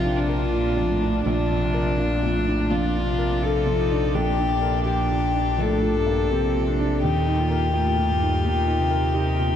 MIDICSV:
0, 0, Header, 1, 7, 480
1, 0, Start_track
1, 0, Key_signature, -2, "major"
1, 0, Tempo, 723764
1, 830, Time_signature, 4, 2, 24, 8
1, 4666, Tempo, 704225
1, 6386, End_track
2, 0, Start_track
2, 0, Title_t, "Violin"
2, 0, Program_c, 0, 40
2, 0, Note_on_c, 0, 65, 73
2, 105, Note_on_c, 0, 62, 64
2, 115, Note_off_c, 0, 65, 0
2, 826, Note_off_c, 0, 62, 0
2, 830, Note_on_c, 0, 62, 75
2, 1793, Note_on_c, 0, 65, 68
2, 1803, Note_off_c, 0, 62, 0
2, 2272, Note_on_c, 0, 69, 70
2, 2282, Note_off_c, 0, 65, 0
2, 2748, Note_on_c, 0, 67, 71
2, 2758, Note_off_c, 0, 69, 0
2, 3223, Note_off_c, 0, 67, 0
2, 3227, Note_on_c, 0, 67, 62
2, 3713, Note_on_c, 0, 69, 68
2, 3723, Note_off_c, 0, 67, 0
2, 4659, Note_off_c, 0, 69, 0
2, 4663, Note_on_c, 0, 67, 75
2, 6386, Note_off_c, 0, 67, 0
2, 6386, End_track
3, 0, Start_track
3, 0, Title_t, "String section"
3, 0, Program_c, 1, 48
3, 0, Note_on_c, 1, 62, 65
3, 0, Note_on_c, 1, 65, 58
3, 0, Note_on_c, 1, 70, 56
3, 806, Note_off_c, 1, 65, 0
3, 806, Note_off_c, 1, 70, 0
3, 807, Note_off_c, 1, 62, 0
3, 833, Note_on_c, 1, 65, 62
3, 834, Note_on_c, 1, 74, 61
3, 2727, Note_off_c, 1, 65, 0
3, 2750, Note_on_c, 1, 67, 64
3, 4639, Note_off_c, 1, 74, 0
3, 4661, Note_on_c, 1, 63, 54
3, 4663, Note_on_c, 1, 70, 58
3, 6386, Note_off_c, 1, 63, 0
3, 6386, Note_off_c, 1, 67, 0
3, 6386, Note_off_c, 1, 70, 0
3, 6386, End_track
4, 0, Start_track
4, 0, Title_t, "Viola"
4, 0, Program_c, 2, 41
4, 0, Note_on_c, 2, 65, 74
4, 828, Note_off_c, 2, 65, 0
4, 832, Note_on_c, 2, 65, 67
4, 1310, Note_on_c, 2, 62, 69
4, 1320, Note_off_c, 2, 65, 0
4, 1789, Note_off_c, 2, 62, 0
4, 1793, Note_on_c, 2, 62, 66
4, 2276, Note_on_c, 2, 65, 65
4, 2286, Note_off_c, 2, 62, 0
4, 2518, Note_on_c, 2, 63, 74
4, 2528, Note_off_c, 2, 65, 0
4, 2754, Note_on_c, 2, 62, 65
4, 2764, Note_off_c, 2, 63, 0
4, 2984, Note_off_c, 2, 62, 0
4, 2988, Note_on_c, 2, 62, 72
4, 4183, Note_on_c, 2, 60, 69
4, 4193, Note_off_c, 2, 62, 0
4, 4429, Note_on_c, 2, 62, 68
4, 4439, Note_off_c, 2, 60, 0
4, 4659, Note_off_c, 2, 62, 0
4, 4663, Note_on_c, 2, 63, 69
4, 4911, Note_on_c, 2, 65, 75
4, 4921, Note_off_c, 2, 63, 0
4, 5144, Note_off_c, 2, 65, 0
4, 5148, Note_on_c, 2, 65, 68
4, 6104, Note_on_c, 2, 63, 64
4, 6115, Note_off_c, 2, 65, 0
4, 6342, Note_off_c, 2, 63, 0
4, 6346, Note_on_c, 2, 63, 73
4, 6386, Note_off_c, 2, 63, 0
4, 6386, End_track
5, 0, Start_track
5, 0, Title_t, "Grand piano"
5, 0, Program_c, 3, 0
5, 0, Control_c, 3, 64, 127
5, 0, Note_on_c, 3, 34, 72
5, 0, Note_on_c, 3, 41, 51
5, 0, Note_on_c, 3, 62, 58
5, 0, Note_on_c, 3, 65, 59
5, 0, Note_on_c, 3, 70, 56
5, 29, Note_off_c, 3, 62, 0
5, 29, Note_on_c, 3, 62, 51
5, 121, Note_off_c, 3, 41, 0
5, 191, Note_off_c, 3, 70, 0
5, 191, Note_on_c, 3, 70, 54
5, 282, Note_off_c, 3, 62, 0
5, 352, Note_off_c, 3, 65, 0
5, 352, Note_on_c, 3, 65, 51
5, 445, Note_off_c, 3, 70, 0
5, 508, Note_on_c, 3, 41, 51
5, 607, Note_off_c, 3, 65, 0
5, 674, Note_on_c, 3, 62, 57
5, 767, Note_off_c, 3, 41, 0
5, 838, Note_off_c, 3, 34, 0
5, 838, Note_on_c, 3, 34, 74
5, 842, Control_c, 3, 64, 0
5, 931, Note_off_c, 3, 62, 0
5, 947, Control_c, 3, 64, 127
5, 1001, Note_on_c, 3, 41, 56
5, 1156, Note_on_c, 3, 70, 61
5, 1252, Note_off_c, 3, 41, 0
5, 1314, Note_on_c, 3, 65, 53
5, 1409, Note_off_c, 3, 70, 0
5, 1478, Note_on_c, 3, 41, 50
5, 1568, Note_off_c, 3, 65, 0
5, 1635, Note_on_c, 3, 62, 49
5, 1731, Note_off_c, 3, 41, 0
5, 1769, Note_off_c, 3, 34, 0
5, 1793, Note_on_c, 3, 41, 57
5, 1890, Note_off_c, 3, 62, 0
5, 1960, Note_on_c, 3, 62, 55
5, 2050, Note_off_c, 3, 41, 0
5, 2112, Note_on_c, 3, 70, 52
5, 2214, Note_off_c, 3, 62, 0
5, 2269, Note_on_c, 3, 65, 56
5, 2370, Note_off_c, 3, 70, 0
5, 2429, Note_on_c, 3, 41, 52
5, 2527, Note_off_c, 3, 65, 0
5, 2595, Note_on_c, 3, 62, 55
5, 2686, Note_off_c, 3, 41, 0
5, 2751, Note_on_c, 3, 34, 73
5, 2753, Note_off_c, 3, 62, 0
5, 2764, Control_c, 3, 64, 0
5, 2872, Control_c, 3, 64, 127
5, 2907, Note_on_c, 3, 62, 52
5, 3064, Note_on_c, 3, 70, 55
5, 3162, Note_off_c, 3, 62, 0
5, 3220, Note_on_c, 3, 67, 61
5, 3321, Note_off_c, 3, 70, 0
5, 3379, Note_on_c, 3, 46, 45
5, 3479, Note_off_c, 3, 67, 0
5, 3542, Note_on_c, 3, 62, 54
5, 3638, Note_off_c, 3, 46, 0
5, 3679, Note_off_c, 3, 34, 0
5, 3702, Note_on_c, 3, 34, 60
5, 3799, Note_off_c, 3, 62, 0
5, 3857, Note_on_c, 3, 46, 52
5, 4021, Note_on_c, 3, 58, 55
5, 4117, Note_off_c, 3, 46, 0
5, 4189, Note_on_c, 3, 67, 58
5, 4280, Note_off_c, 3, 58, 0
5, 4345, Note_on_c, 3, 46, 54
5, 4443, Note_off_c, 3, 67, 0
5, 4504, Note_on_c, 3, 62, 54
5, 4601, Note_off_c, 3, 46, 0
5, 4635, Note_off_c, 3, 34, 0
5, 4663, Note_off_c, 3, 62, 0
5, 4664, Note_on_c, 3, 39, 74
5, 4676, Control_c, 3, 64, 0
5, 4801, Control_c, 3, 64, 127
5, 4820, Note_on_c, 3, 63, 59
5, 4983, Note_on_c, 3, 70, 55
5, 5080, Note_off_c, 3, 63, 0
5, 5141, Note_on_c, 3, 67, 61
5, 5241, Note_off_c, 3, 70, 0
5, 5303, Note_on_c, 3, 46, 54
5, 5400, Note_off_c, 3, 67, 0
5, 5466, Note_on_c, 3, 63, 58
5, 5561, Note_off_c, 3, 46, 0
5, 5599, Note_off_c, 3, 39, 0
5, 5622, Note_on_c, 3, 46, 51
5, 5721, Note_off_c, 3, 63, 0
5, 5784, Note_on_c, 3, 63, 58
5, 5878, Note_off_c, 3, 46, 0
5, 5941, Note_on_c, 3, 70, 56
5, 6039, Note_off_c, 3, 63, 0
5, 6102, Note_on_c, 3, 67, 59
5, 6198, Note_off_c, 3, 70, 0
5, 6269, Note_on_c, 3, 46, 49
5, 6360, Note_off_c, 3, 67, 0
5, 6386, Note_off_c, 3, 46, 0
5, 6386, End_track
6, 0, Start_track
6, 0, Title_t, "Cello"
6, 0, Program_c, 4, 42
6, 0, Note_on_c, 4, 48, 72
6, 346, Note_off_c, 4, 48, 0
6, 349, Note_on_c, 4, 46, 68
6, 585, Note_off_c, 4, 46, 0
6, 589, Note_on_c, 4, 45, 71
6, 827, Note_off_c, 4, 45, 0
6, 833, Note_on_c, 4, 46, 64
6, 1077, Note_on_c, 4, 48, 70
6, 1087, Note_off_c, 4, 46, 0
6, 1323, Note_on_c, 4, 46, 72
6, 1333, Note_off_c, 4, 48, 0
6, 1565, Note_on_c, 4, 45, 69
6, 1575, Note_off_c, 4, 46, 0
6, 1799, Note_on_c, 4, 46, 66
6, 1809, Note_off_c, 4, 45, 0
6, 2037, Note_off_c, 4, 46, 0
6, 2041, Note_on_c, 4, 48, 66
6, 2747, Note_on_c, 4, 46, 63
6, 2757, Note_off_c, 4, 48, 0
6, 3704, Note_on_c, 4, 45, 76
6, 3714, Note_off_c, 4, 46, 0
6, 3944, Note_on_c, 4, 43, 68
6, 3954, Note_off_c, 4, 45, 0
6, 4183, Note_off_c, 4, 43, 0
6, 4187, Note_on_c, 4, 48, 64
6, 4659, Note_on_c, 4, 46, 62
6, 4669, Note_off_c, 4, 48, 0
6, 5144, Note_off_c, 4, 46, 0
6, 5147, Note_on_c, 4, 45, 68
6, 5393, Note_on_c, 4, 43, 68
6, 5403, Note_off_c, 4, 45, 0
6, 5629, Note_on_c, 4, 46, 71
6, 5639, Note_off_c, 4, 43, 0
6, 5860, Note_on_c, 4, 48, 69
6, 5871, Note_off_c, 4, 46, 0
6, 6386, Note_off_c, 4, 48, 0
6, 6386, End_track
7, 0, Start_track
7, 0, Title_t, "Sub bass"
7, 0, Program_c, 5, 38
7, 0, Note_on_c, 5, 34, 69
7, 806, Note_off_c, 5, 34, 0
7, 830, Note_on_c, 5, 34, 69
7, 4664, Note_on_c, 5, 39, 64
7, 4674, Note_off_c, 5, 34, 0
7, 6386, Note_off_c, 5, 39, 0
7, 6386, End_track
0, 0, End_of_file